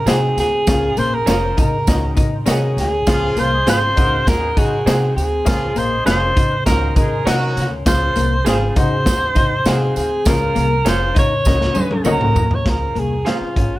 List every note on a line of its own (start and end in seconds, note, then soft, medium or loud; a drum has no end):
0.06 0.30 C3 medium
0.06 0.64 C4 medium
0.06 0.43 D#4 medium
0.06 0.43 F#4 medium
0.06 0.17 G#4 medium
0.06 0.43 G#4 medium
0.06 0.36 G#4 medium
0.06 0.18 C5 loud
0.06 0.44 C5 medium
0.06 0.18 F#5 loud
0.06 0.44 F#5 medium
0.06 snare loud
0.06 closed hi-hat medium
0.06 tambourine medium
0.37 0.60 D2 medium
0.37 1.00 G#4 loud
0.37 snare soft
0.37 closed hi-hat medium
0.37 tambourine medium
0.67 0.90 C#2 loud
0.67 1.53 C#3 medium
0.67 1.03 C#4 medium
0.67 1.03 F4 medium
0.67 1.03 G#4 medium
0.67 1.04 A#4 medium
0.67 1.04 F5 medium
0.67 kick loud
0.67 snare loud
0.67 closed hi-hat medium
0.67 tambourine loud
0.97 1.20 A#1 medium
0.97 1.16 A#3 medium
0.97 1.16 C5 loud
0.97 closed hi-hat medium
0.97 tambourine medium
1.14 1.58 A#4 loud
1.26 1.50 F1 medium
1.26 1.46 C#4 medium
1.26 1.63 C#4 medium
1.26 1.64 F4 medium
1.26 1.37 G#4 medium
1.26 1.64 G#4 medium
1.26 1.64 A#4 medium
1.26 1.64 C5 medium
1.26 1.37 C#5 medium
1.26 1.38 F5 loud
1.26 snare loud
1.26 closed hi-hat medium
1.26 tambourine loud
1.57 1.80 C#3 medium
1.57 1.76 D#4 medium
1.57 2.14 A#4 medium
1.57 kick loud
1.57 closed hi-hat medium
1.57 tambourine medium
1.87 2.10 C#2 loud
1.87 2.73 D#3 medium
1.87 2.23 C#4 medium
1.87 2.24 D#4 medium
1.87 2.24 F#4 medium
1.87 2.24 A#4 medium
1.87 2.24 D#5 medium
1.87 kick medium
1.87 snare loud
1.87 closed hi-hat medium
1.87 tambourine loud
2.17 2.40 C#3 medium
2.17 2.35 D#4 medium
2.17 kick loud
2.17 closed hi-hat medium
2.17 tambourine medium
2.46 2.78 C3 medium
2.46 3.03 C#4 medium
2.46 2.83 D#4 medium
2.46 2.83 F#4 medium
2.46 2.57 A#4 medium
2.46 2.83 A#4 medium
2.46 2.83 C#5 medium
2.46 2.57 C#5 medium
2.46 2.83 D#5 medium
2.46 2.58 F#5 loud
2.46 snare loud
2.46 closed hi-hat medium
2.46 tambourine medium
2.51 2.77 G#4 medium
2.77 3.00 D2 medium
2.77 3.41 G#4 loud
2.77 snare soft
2.77 closed hi-hat medium
2.77 tambourine medium
3.07 3.30 C#2 loud
3.07 3.93 F3 medium
3.07 3.49 F3 loud
3.07 3.43 C#4 medium
3.07 3.43 F4 medium
3.07 3.49 F4 loud
3.07 3.43 G#4 medium
3.07 3.43 C5 medium
3.07 3.43 F5 loud
3.07 kick loud
3.07 snare loud
3.07 closed hi-hat medium
3.07 tambourine medium
3.36 3.60 C2 medium
3.36 3.55 A#3 medium
3.36 3.68 C5 loud
3.36 closed hi-hat medium
3.36 tambourine medium
3.52 3.64 G#3 medium
3.52 3.64 G#4 medium
3.66 3.90 G#1 medium
3.66 3.95 C#3 medium
3.66 3.86 C4 medium
3.66 3.91 C4 medium
3.66 3.96 F4 medium
3.66 3.77 G#4 medium
3.66 3.95 G#4 medium
3.66 3.96 C5 medium
3.66 3.91 C5 loud
3.66 3.78 C5 medium
3.66 4.30 C5 loud
3.66 3.78 F5 loud
3.66 3.97 G#5 medium
3.66 snare loud
3.66 closed hi-hat medium
3.66 tambourine loud
3.96 4.20 C#2 medium
3.96 4.82 C#3 medium
3.96 4.21 A#3 medium
3.96 4.68 D#4 medium
3.96 4.16 D#4 medium
3.96 4.68 F#4 medium
3.96 4.69 G#4 medium
3.96 4.20 A#4 medium
3.96 4.69 C5 medium
3.96 4.69 F#5 medium
3.96 kick loud
3.96 closed hi-hat medium
3.96 tambourine medium
4.26 4.50 D#2 loud
4.26 4.50 G#3 medium
4.26 4.50 G#4 loud
4.26 4.60 A#4 loud
4.26 kick medium
4.26 snare loud
4.26 closed hi-hat medium
4.26 tambourine medium
4.57 4.80 C#3 medium
4.57 4.81 F#3 medium
4.57 4.75 D#4 medium
4.57 4.81 F#4 loud
4.57 4.87 G#4 loud
4.57 kick loud
4.57 closed hi-hat medium
4.57 tambourine medium
4.86 5.10 C3 loud
4.86 5.43 C4 medium
4.86 5.22 D#4 medium
4.86 5.22 F#4 medium
4.86 4.97 G#4 medium
4.86 5.23 G#4 medium
4.86 5.15 G#4 medium
4.86 4.97 C5 medium
4.86 5.23 C5 medium
4.86 5.23 F#5 medium
4.86 4.97 F#5 medium
4.86 snare loud
4.86 closed hi-hat medium
4.86 tambourine medium
5.16 5.40 D2 medium
5.16 5.79 G#4 medium
5.16 closed hi-hat medium
5.16 tambourine medium
5.45 5.70 C#2 loud
5.45 6.32 C#3 medium
5.45 5.71 F3 loud
5.45 5.82 C#4 medium
5.45 5.82 F4 medium
5.45 5.71 F4 loud
5.45 5.82 G#4 medium
5.45 5.82 A#4 medium
5.45 5.82 F5 medium
5.45 kick loud
5.45 snare loud
5.45 closed hi-hat medium
5.45 tambourine loud
5.76 5.99 A#1 loud
5.76 6.34 G#3 medium
5.76 5.95 A#3 medium
5.76 6.33 G#4 medium
5.76 6.06 C5 loud
5.76 closed hi-hat medium
5.76 tambourine medium
6.06 6.29 F1 medium
6.06 6.42 C#4 medium
6.06 6.24 C#4 medium
6.06 6.42 F4 medium
6.06 6.17 G#4 medium
6.06 6.42 G#4 medium
6.06 6.43 A#4 medium
6.06 6.62 C5 loud
6.06 6.17 C#5 medium
6.06 6.17 F5 medium
6.06 6.43 F5 medium
6.06 snare loud
6.06 closed hi-hat medium
6.06 tambourine loud
6.36 6.60 C#3 medium
6.36 6.54 D#4 medium
6.36 kick loud
6.36 closed hi-hat medium
6.36 tambourine medium
6.66 6.89 C#2 loud
6.66 7.52 D#3 medium
6.66 6.91 A#3 medium
6.66 7.02 C#4 medium
6.66 7.02 D#4 medium
6.66 7.02 F#4 medium
6.66 6.94 A#4 loud
6.66 7.03 A#4 medium
6.66 6.91 A#4 loud
6.66 7.03 D#5 medium
6.66 kick medium
6.66 snare loud
6.66 closed hi-hat medium
6.66 tambourine loud
6.96 7.19 C#3 loud
6.96 7.21 G#3 medium
6.96 7.15 D#4 medium
6.96 7.21 G#4 medium
6.96 7.55 A#4 medium
6.96 kick loud
6.96 closed hi-hat medium
6.96 tambourine medium
7.25 7.58 C3 medium
7.25 7.69 F#3 loud
7.25 7.83 C#4 medium
7.25 7.62 D#4 medium
7.25 7.68 F#4 loud
7.25 7.62 F#4 medium
7.25 7.36 A#4 medium
7.25 7.63 A#4 medium
7.25 7.62 C#5 medium
7.25 7.37 C#5 medium
7.25 7.63 D#5 medium
7.25 7.37 F#5 medium
7.25 snare loud
7.25 closed hi-hat medium
7.25 tambourine medium
7.56 7.79 D2 medium
7.56 snare soft
7.56 closed hi-hat medium
7.56 tambourine medium
7.86 8.09 C#2 loud
7.86 8.72 F3 medium
7.86 8.22 C#4 medium
7.86 8.22 F4 medium
7.86 8.22 G#4 medium
7.86 8.22 C5 medium
7.86 8.43 C5 loud
7.86 8.23 F5 loud
7.86 kick loud
7.86 snare loud
7.86 closed hi-hat medium
7.86 tambourine loud
8.16 8.40 C2 loud
8.16 8.34 A#3 medium
8.16 closed hi-hat medium
8.16 tambourine medium
8.45 8.69 G#1 medium
8.45 8.75 C#3 medium
8.45 8.65 C4 medium
8.45 8.77 F4 medium
8.45 8.56 G#4 medium
8.45 8.79 G#4 medium
8.45 8.76 G#4 medium
8.45 8.56 C5 medium
8.45 8.76 C5 medium
8.45 8.57 F5 medium
8.45 8.77 F5 medium
8.45 snare loud
8.45 closed hi-hat medium
8.45 tambourine loud
8.76 8.99 C#3 loud
8.76 9.62 C#3 medium
8.76 8.95 D#4 medium
8.76 9.48 D#4 medium
8.76 9.48 F#4 medium
8.76 9.49 G#4 medium
8.76 9.69 C5 loud
8.76 9.49 C5 medium
8.76 9.49 F#5 medium
8.76 kick loud
8.76 closed hi-hat loud
8.76 tambourine medium
9.05 9.29 D#2 loud
9.05 kick medium
9.05 snare loud
9.05 closed hi-hat medium
9.05 tambourine loud
9.35 9.59 C#3 loud
9.35 9.54 D#4 medium
9.35 kick loud
9.35 closed hi-hat medium
9.35 tambourine medium
9.65 9.89 C3 medium
9.65 10.22 C4 medium
9.65 10.02 D#4 medium
9.65 10.02 F#4 medium
9.65 9.77 G#4 medium
9.65 10.02 G#4 medium
9.65 9.96 G#4 medium
9.65 9.77 C5 medium
9.65 10.03 C5 medium
9.65 10.03 F5 medium
9.65 9.77 F#5 medium
9.65 snare loud
9.65 closed hi-hat medium
9.65 tambourine medium
9.96 10.19 D2 medium
9.96 10.29 G#4 medium
9.96 closed hi-hat medium
9.96 tambourine medium
10.25 10.49 C#2 loud
10.25 11.13 F3 medium
10.25 10.62 C#4 loud
10.25 10.63 F4 medium
10.25 10.63 G#4 medium
10.25 10.90 A#4 loud
10.25 10.63 A#4 medium
10.25 10.63 F5 loud
10.25 kick loud
10.25 snare loud
10.25 closed hi-hat medium
10.25 tambourine medium
10.55 10.79 C2 loud
10.55 10.74 A#3 medium
10.55 closed hi-hat medium
10.55 tambourine medium
10.85 11.09 F1 medium
10.85 11.04 C#4 medium
10.85 11.22 C#4 medium
10.85 11.22 F4 medium
10.85 10.96 G#4 medium
10.85 11.23 G#4 medium
10.85 11.23 A#4 medium
10.85 11.17 C5 loud
10.85 10.96 C#5 medium
10.85 10.97 F5 medium
10.85 11.23 F5 medium
10.85 snare loud
10.85 closed hi-hat medium
10.85 tambourine loud
11.15 11.39 C#3 medium
11.15 11.34 D#4 medium
11.15 kick loud
11.15 closed hi-hat medium
11.15 tambourine medium
11.19 12.03 C#5 loud
11.45 11.69 C#2 loud
11.45 12.32 C#3 medium
11.45 11.82 C#4 medium
11.45 11.82 D#4 medium
11.45 11.82 F#4 medium
11.45 11.82 A#4 medium
11.45 11.82 D#5 medium
11.45 kick medium
11.45 snare medium
11.45 tambourine loud
11.61 snare medium
11.74 11.99 D#2 medium
11.74 11.93 C#4 medium
11.74 high tom medium
11.74 tambourine medium
11.91 high tom medium
12.04 12.29 C#2 medium
12.04 12.61 A#3 medium
12.04 12.42 C#4 medium
12.04 12.42 D#4 medium
12.04 12.42 F#4 medium
12.04 12.16 A#4 medium
12.04 12.42 A#4 medium
12.04 12.16 C#5 medium
12.04 12.42 D#5 loud
12.04 12.17 F#5 medium
12.04 mid tom medium
12.04 tambourine medium
12.11 12.56 A#4 loud
12.21 mid tom medium
12.35 12.59 D2 medium
12.35 floor tom loud
12.35 tambourine medium
12.51 12.71 C#5 medium
12.51 floor tom medium
12.65 12.89 C#2 medium
12.65 13.52 F3 medium
12.65 13.02 C#4 medium
12.65 13.02 G#4 medium
12.65 13.01 A#4 loud
12.65 13.02 C5 medium
12.65 13.02 F5 medium
12.65 kick loud
12.65 snare loud
12.65 closed hi-hat medium
12.95 13.19 C2 medium
12.95 13.14 A#3 medium
12.95 13.31 G#4 medium
12.95 closed hi-hat medium
13.25 13.62 C#3 medium
13.25 13.44 C4 medium
13.25 13.36 G#4 medium
13.25 13.62 G#4 medium
13.25 13.36 C5 medium
13.25 13.62 C5 medium
13.25 13.37 F5 medium
13.25 13.62 F5 medium
13.25 snare loud
13.25 closed hi-hat medium
13.30 13.77 F4 medium
13.41 muted upright bass stroke soft
13.56 13.79 G#1 medium
13.56 13.75 C#4 medium
13.56 kick loud
13.56 closed hi-hat medium
13.76 13.79 F#4 medium